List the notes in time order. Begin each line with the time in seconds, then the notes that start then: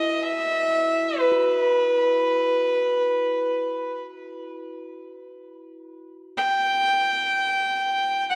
Already playing: E4 F#4 D#5
0.23 E5
1.19 B4
1.32 F#4
6.37 G5
8.30 F#5